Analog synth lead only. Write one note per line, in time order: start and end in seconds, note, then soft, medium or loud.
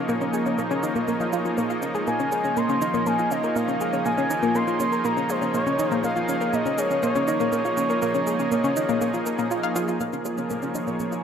2.07 2.58 G#5 loud
2.57 3.08 C6 loud
3.07 3.33 G#5 loud
3.31 3.58 D#5 medium
3.56 4.05 F5 loud
4.06 4.57 G#5 loud
4.55 5.07 C6 loud
5.05 5.31 A#5 loud
5.30 5.54 C5 medium
5.54 5.88 C#5 medium
5.88 6.00 C5 medium
6.04 6.55 F5 loud
6.54 6.80 D#5 medium
6.78 7.03 C#5 medium
7.03 9.47 C#5 medium